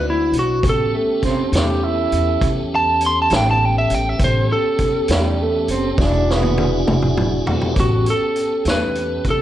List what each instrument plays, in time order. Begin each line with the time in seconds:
Already playing: upright bass D2, tonewheel organ C4 D4 E4 F#4
0.10 lead electric guitar E4
0.32 upright bass B1, closed hi-hat
0.39 lead electric guitar F#4
0.63 upright bass A1, tonewheel organ B3 C#4 G4 A4, kick, closed hi-hat
0.69 lead electric guitar A4
0.94 tenor saxophone A3
1.23 tenor saxophone C4, kick, snare, closed hi-hat
1.52 upright bass E2, tenor saxophone G4, snare, closed hi-hat
1.84 tenor saxophone E4
2.12 upright bass E2, closed hi-hat
2.41 upright bass E2, kick, closed hi-hat
2.75 lead electric guitar A5
3.01 closed hi-hat
3.06 lead electric guitar C6
3.22 lead electric guitar A5
3.30 upright bass A1, snare, closed hi-hat
3.36 lead electric guitar G5
3.51 lead electric guitar A5
3.65 lead electric guitar G5
3.78 lead electric guitar E5
3.90 upright bass A1, closed hi-hat
3.95 lead electric guitar G5
4.09 lead electric guitar E5
4.19 upright bass A1, tonewheel organ B3 C#4 G4 A4, kick, closed hi-hat
4.24 lead electric guitar C5
4.52 lead electric guitar A4
4.79 kick, closed hi-hat
5.08 upright bass E2, tenor saxophone G3, snare, closed hi-hat
5.41 tenor saxophone A3
5.68 upright bass F#1, tenor saxophone C4, closed hi-hat
5.98 upright bass E1, tonewheel organ D4 E4 F#4 G#4, tenor saxophone D4, kick, snare
6.30 tenor saxophone B3, snare
6.43 high tom
6.58 high tom
6.88 upright bass E1, mid tom
7.02 mid tom
7.17 mid tom
7.46 upright bass E1, tonewheel organ A3 B3, floor tom
7.51 tonewheel organ C4 D4
7.57 tonewheel organ E4 F4
7.61 tonewheel organ G4 A4, floor tom
7.69 tonewheel organ B4 C5
7.74 upright bass A1, tonewheel organ B3 C#4 G4 A4 D5, kick, closed hi-hat
7.80 lead electric guitar F#4
8.06 closed hi-hat
8.10 lead electric guitar A4
8.36 closed hi-hat
8.65 upright bass E2, snare, closed hi-hat
8.70 lead electric guitar B4
8.95 closed hi-hat
9.25 upright bass E2, kick, closed hi-hat
9.30 lead electric guitar A4